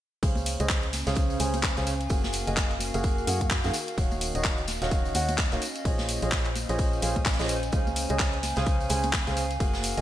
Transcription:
0.23 fm bass C#2, upright piano C#3 C#4 G#4 C5 F5, ambient pad C#4, kick, closed hi-hat, tambourine
0.35 tambourine, high conga
0.46 closed hi-hat, open hi-hat, tambourine
0.60 fm bass C#2, upright piano C#3 C#4 G#4 C5 D#5, ambient pad C5, closed hi-hat, tambourine
0.69 kick, snare, clap, closed hi-hat, tambourine
0.83 closed hi-hat
0.92 ambient pad G#5, snare, closed hi-hat, open hi-hat, tambourine, high conga
1.00 ambient pad F5
1.07 fm bass C#2, upright piano C#3 C#4 G#4 C5 F5, snare, closed hi-hat, tambourine
1.15 kick, closed hi-hat, tambourine
1.30 closed hi-hat, tambourine
1.40 fm bass C#2, upright piano C#3 C#4 G#4 C5 G#5, closed hi-hat, open hi-hat, tambourine
1.54 closed hi-hat, tambourine, high conga
1.63 kick, snare, clap, closed hi-hat, tambourine
1.76 fm bass C#2, upright piano C#3 C#4 G#4 C5 F5, snare, closed hi-hat, tambourine
1.87 closed hi-hat, open hi-hat, tambourine
2.01 closed hi-hat, tambourine
2.10 fm bass F#1, upright piano A#3 F#4 G#4 F5, ambient pad F#4, kick, closed hi-hat, tambourine
2.24 snare, tambourine, high conga
2.32 ambient pad A#4, closed hi-hat, open hi-hat, tambourine
2.47 fm bass F#1, upright piano A#3 F#4 G#4 D#5, closed hi-hat, tambourine
2.57 kick, snare, clap, closed hi-hat, tambourine
2.71 closed hi-hat
2.80 closed hi-hat, open hi-hat, tambourine, high conga
2.94 fm bass F#1, upright piano A#3 F#4 G#4 F5, closed hi-hat, tambourine
3.04 kick, closed hi-hat, tambourine
3.18 tambourine
3.27 fm bass F#2, upright piano A#3 F#4 G#4 F#5, closed hi-hat, open hi-hat, tambourine
3.41 kick, closed hi-hat, tambourine, high conga
3.50 kick, snare, clap, closed hi-hat, tambourine
3.64 fm bass F#2, upright piano D#3 A#3 F#4 G#4 F5, snare, closed hi-hat, tambourine
3.74 ambient pad C#4, closed hi-hat, open hi-hat, tambourine
3.87 ambient pad D#5, closed hi-hat, tambourine
3.98 fm bass D#1, upright piano D#3 D#4 F#4 C#5 F5, kick, closed hi-hat, tambourine
4.11 tambourine, high conga
4.21 closed hi-hat, open hi-hat, tambourine
4.35 fm bass D#1, upright piano D#3 D#4 F#4 C#5 D#5, closed hi-hat, tambourine
4.44 kick, snare, clap, closed hi-hat, tambourine
4.58 closed hi-hat
4.68 snare, closed hi-hat, open hi-hat, tambourine, high conga
4.82 fm bass D#1, upright piano D#3 D#4 F#4 C#5 F5, snare, closed hi-hat, tambourine
4.91 kick, closed hi-hat, tambourine
5.05 closed hi-hat, tambourine
5.15 fm bass D#2, upright piano D#3 D#4 F#4 C#5 F#5, closed hi-hat, open hi-hat, tambourine
5.29 closed hi-hat, tambourine, high conga
5.38 kick, snare, clap, closed hi-hat, tambourine
5.51 fm bass D#1, upright piano A#3 D#4 F#4 C#5 F5, snare, closed hi-hat, tambourine
5.62 closed hi-hat, open hi-hat, tambourine
5.76 closed hi-hat, tambourine
5.83 fm bass A#1, upright piano A#2 C#4 G#4 C5 D#5, ambient pad C5, kick, closed hi-hat, tambourine
5.98 snare, closed hi-hat, tambourine, high conga
6.08 closed hi-hat, open hi-hat, tambourine
6.22 fm bass A#1, upright piano A#2 C#4 G#4 C5 D#5, closed hi-hat, tambourine
6.30 ambient pad G#5, kick, snare, clap, closed hi-hat, tambourine
6.45 clap, closed hi-hat
6.55 closed hi-hat, open hi-hat, tambourine, high conga
6.69 fm bass A#1, upright piano A#2 C#4 G#4 C5 D#5, closed hi-hat, tambourine
6.79 kick, closed hi-hat, tambourine
6.93 tambourine
7.02 fm bass A#1, upright piano A#2 C#4 G#4 C5 F5, closed hi-hat, open hi-hat, tambourine
7.16 kick, closed hi-hat, tambourine, high conga
7.25 kick, snare, clap, closed hi-hat, tambourine
7.33 snare, closed hi-hat
7.39 fm bass A#1, upright piano A#2 C#4 G#4 C5 D#5, snare, closed hi-hat, tambourine
7.44 snare, closed hi-hat
7.49 closed hi-hat, open hi-hat, tambourine
7.63 closed hi-hat, tambourine
7.72 fm bass C#2, upright piano C#3 C#4 G#4 C5 F5, kick, closed hi-hat, tambourine
7.87 tambourine, high conga
7.96 closed hi-hat, open hi-hat, tambourine
8.05 ambient pad F5, tambourine
8.10 fm bass C#2, upright piano C#3 C#4 G#4 C5 D#5, closed hi-hat
8.19 kick, snare, clap, closed hi-hat, tambourine
8.33 closed hi-hat
8.43 snare, closed hi-hat, open hi-hat, tambourine, high conga
8.56 fm bass C#2, upright piano C#3 C#4 G#4 C5 F5, snare, closed hi-hat, tambourine
8.66 kick, closed hi-hat, tambourine
8.80 closed hi-hat, tambourine
8.89 fm bass C#2, upright piano C#3 C#4 G#4 C5 G#5, closed hi-hat, open hi-hat, tambourine
9.03 closed hi-hat, tambourine, high conga
9.13 kick, snare, clap, closed hi-hat, tambourine
9.27 fm bass C#2, upright piano C#3 C#4 G#4 C5 F5, snare, closed hi-hat, tambourine
9.37 closed hi-hat, open hi-hat, tambourine
9.50 closed hi-hat, tambourine
9.60 fm bass F#1, upright piano A#3 F#4 G#4 F5, ambient pad F#4, kick, closed hi-hat, tambourine
9.70 ambient pad A#4, snare, high conga
9.74 tambourine
9.83 closed hi-hat, open hi-hat, tambourine
9.97 fm bass F#1, upright piano A#3 F#4 G#4 D#5, closed hi-hat

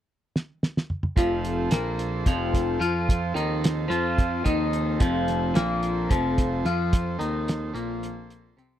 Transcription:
0.36 snare
0.63 snare
0.77 snare
0.90 mid tom
1.03 mid tom
1.16 picked electric bass F1, clean electric guitar F2 F3, transistor combo organ F3 C4 A4 C5, kick, closed hi-hat
1.45 closed hi-hat
1.71 picked electric bass A#1, clean electric guitar A#2 A#3, snare, closed hi-hat
1.99 closed hi-hat
2.26 picked electric bass F1, clean electric guitar F2 F3, kick, snare, closed hi-hat
2.54 kick, closed hi-hat
2.80 picked electric bass F2, clean electric guitar F3 F4, closed hi-hat
3.09 kick, closed hi-hat
3.34 picked electric bass D#2, clean electric guitar D#3 D#4, closed hi-hat
3.64 snare, closed hi-hat
3.88 picked electric bass F2, clean electric guitar F3 F4, closed hi-hat
4.18 kick, closed hi-hat
4.44 picked electric bass D#2, clean electric guitar D#3 D#4, kick, closed hi-hat
4.73 closed hi-hat
5.00 picked electric bass F1, clean electric guitar F2 F3, kick, closed hi-hat
5.28 snare, closed hi-hat
5.54 picked electric bass A#1, clean electric guitar A#2 A#3, snare, closed hi-hat
5.83 closed hi-hat
6.10 picked electric bass F1, clean electric guitar F2 F3, kick, closed hi-hat
6.38 kick, closed hi-hat
6.65 picked electric bass F2, clean electric guitar F3 F4, closed hi-hat
6.93 kick, closed hi-hat
7.19 picked electric bass D#2, clean electric guitar D#3 D#4, closed hi-hat
7.48 snare, closed hi-hat
7.74 picked electric bass A#1, clean electric guitar A#2 A#3, closed hi-hat
8.03 closed hi-hat
8.30 closed hi-hat
8.57 picked electric bass C2, clean electric guitar C3 C4, closed hi-hat

